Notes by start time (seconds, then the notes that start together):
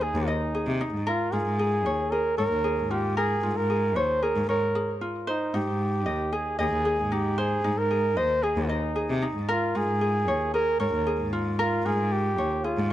Already playing: D#4 C5 D#5
0.01 G#4
0.14 D#2
0.28 D#4 D#5
0.55 G#4
0.67 C3
0.81 D#4
0.93 G#2
1.07 F4 A#4
1.33 G#2 F4 G#4
1.45 G#2
1.59 G#4
1.85 D#2 C#5
2.11 G#4 A#4
2.38 G#2 A#4 C#5
2.52 D#2
2.64 G#4
2.78 G#2
2.91 F4 G4
3.17 G#4 A#4
3.43 G#2 F4
3.57 G#2 A#4
3.70 G#4
3.96 D#2 C5 C#5
4.23 G#4 A#4
4.36 G#2
4.49 G#2 A#4 C#5
4.75 G#4
5.01 F4
5.27 D#4 C5
5.54 G#2 D#4 G4
5.68 G#2
6.06 D#2 D#5
6.32 G#4
6.59 D#2 G#4 D#5
6.73 D#2
6.85 G#4
6.99 G#2
7.12 D#4 G4
7.38 G#4 C5
7.64 G#2 D#4
7.78 G#2 A#4
7.91 G#4
8.17 D#2 C5 D#5
8.43 G#4
8.57 D#2
8.69 D#4 D#5
8.96 G#4
9.10 C3
9.22 D#4
9.36 G#2
9.49 F4 A#4
9.75 G#2 F4 G#4
9.88 G#2
10.01 G#4
10.28 D#2 C#5
10.54 G#4 A#4
10.80 G#2 A#4 C#5
10.93 D#2
11.07 G#4
11.20 G#2
11.33 F4
11.59 F4 A#4
11.85 G#2 F4 G#4
11.98 G#2
12.12 G4
12.38 D#2 C#5
12.64 F4 G#4
12.77 G#2